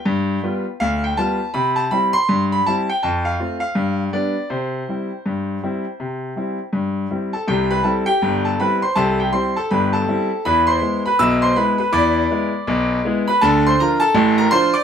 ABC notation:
X:1
M:2/4
L:1/16
Q:"Swing 16ths" 1/4=81
K:C
V:1 name="Grand piano"
g4 f g a2 | b a b c'2 b a g | a f2 f3 d2 | c8- |
c6 z [Aa] | [Gg] [Bb] [Aa] [Gg]2 [Aa] [Bb] [cc'] | [Aa] [Gg] [cc'] [Aa] [Bb] [Aa]3 | [Bb] [cc']2 [Bb] [ee'] [cc'] [Bb] [Bb] |
[dbd']6- [dbd'] [Bb] | [K:Dm] [Aa] [cc'] [Bb] [Aa]2 [Bb] [cc'] [dd'] |]
V:2 name="Grand piano" clef=bass
G,,2 [G,B,F]2 D,,2 [G,B,F]2 | C,2 [G,CE]2 G,,2 [G,CE]2 | F,,2 [A,CF]2 G,,2 [G,B,D]2 | C,2 [G,CE]2 G,,2 [G,CE]2 |
C,2 [G,CE]2 G,,2 [G,CE]2 | [C,,C,]2 [G,CE]2 [G,,,G,,]2 [G,CE]2 | [C,,C,]2 [G,CE]2 [G,,,G,,]2 [G,CE]2 | [E,,E,]2 [^G,B,E]2 [B,,,B,,]2 [G,B,E]2 |
[E,,E,]2 [^G,B,E]2 [B,,,B,,]2 [G,B,E]2 | [K:Dm] [D,,D,]2 [F,DF]2 [A,,,A,,]2 [F,DF]2 |]